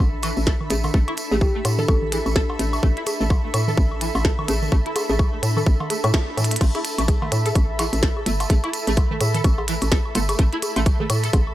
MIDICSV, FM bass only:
0, 0, Header, 1, 2, 480
1, 0, Start_track
1, 0, Tempo, 472441
1, 956, Time_signature, 4, 2, 24, 8
1, 11728, End_track
2, 0, Start_track
2, 0, Title_t, "FM bass"
2, 0, Program_c, 0, 39
2, 0, Note_on_c, 0, 33, 94
2, 336, Note_off_c, 0, 33, 0
2, 377, Note_on_c, 0, 33, 82
2, 688, Note_off_c, 0, 33, 0
2, 716, Note_on_c, 0, 33, 95
2, 920, Note_off_c, 0, 33, 0
2, 954, Note_on_c, 0, 33, 101
2, 1071, Note_off_c, 0, 33, 0
2, 1335, Note_on_c, 0, 33, 79
2, 1647, Note_off_c, 0, 33, 0
2, 1676, Note_on_c, 0, 45, 85
2, 1880, Note_off_c, 0, 45, 0
2, 1915, Note_on_c, 0, 33, 102
2, 2256, Note_off_c, 0, 33, 0
2, 2296, Note_on_c, 0, 33, 80
2, 2607, Note_off_c, 0, 33, 0
2, 2635, Note_on_c, 0, 33, 91
2, 2840, Note_off_c, 0, 33, 0
2, 2875, Note_on_c, 0, 33, 98
2, 2991, Note_off_c, 0, 33, 0
2, 3256, Note_on_c, 0, 33, 84
2, 3567, Note_off_c, 0, 33, 0
2, 3596, Note_on_c, 0, 45, 80
2, 3801, Note_off_c, 0, 45, 0
2, 3835, Note_on_c, 0, 33, 100
2, 4176, Note_off_c, 0, 33, 0
2, 4216, Note_on_c, 0, 33, 79
2, 4527, Note_off_c, 0, 33, 0
2, 4556, Note_on_c, 0, 33, 95
2, 4761, Note_off_c, 0, 33, 0
2, 4796, Note_on_c, 0, 33, 100
2, 4911, Note_off_c, 0, 33, 0
2, 5176, Note_on_c, 0, 33, 85
2, 5487, Note_off_c, 0, 33, 0
2, 5514, Note_on_c, 0, 45, 82
2, 5720, Note_off_c, 0, 45, 0
2, 5756, Note_on_c, 0, 33, 89
2, 5871, Note_off_c, 0, 33, 0
2, 6136, Note_on_c, 0, 45, 106
2, 6218, Note_off_c, 0, 45, 0
2, 6475, Note_on_c, 0, 45, 88
2, 6680, Note_off_c, 0, 45, 0
2, 6715, Note_on_c, 0, 33, 96
2, 6831, Note_off_c, 0, 33, 0
2, 7095, Note_on_c, 0, 33, 82
2, 7407, Note_off_c, 0, 33, 0
2, 7436, Note_on_c, 0, 45, 82
2, 7641, Note_off_c, 0, 45, 0
2, 7675, Note_on_c, 0, 33, 102
2, 8016, Note_off_c, 0, 33, 0
2, 8055, Note_on_c, 0, 33, 81
2, 8367, Note_off_c, 0, 33, 0
2, 8395, Note_on_c, 0, 31, 96
2, 8600, Note_off_c, 0, 31, 0
2, 8635, Note_on_c, 0, 33, 99
2, 8751, Note_off_c, 0, 33, 0
2, 9017, Note_on_c, 0, 33, 79
2, 9328, Note_off_c, 0, 33, 0
2, 9355, Note_on_c, 0, 45, 80
2, 9560, Note_off_c, 0, 45, 0
2, 9595, Note_on_c, 0, 33, 98
2, 9936, Note_off_c, 0, 33, 0
2, 9977, Note_on_c, 0, 33, 81
2, 10288, Note_off_c, 0, 33, 0
2, 10315, Note_on_c, 0, 31, 97
2, 10520, Note_off_c, 0, 31, 0
2, 10555, Note_on_c, 0, 33, 98
2, 10671, Note_off_c, 0, 33, 0
2, 10936, Note_on_c, 0, 33, 86
2, 11247, Note_off_c, 0, 33, 0
2, 11276, Note_on_c, 0, 45, 83
2, 11480, Note_off_c, 0, 45, 0
2, 11515, Note_on_c, 0, 33, 94
2, 11728, Note_off_c, 0, 33, 0
2, 11728, End_track
0, 0, End_of_file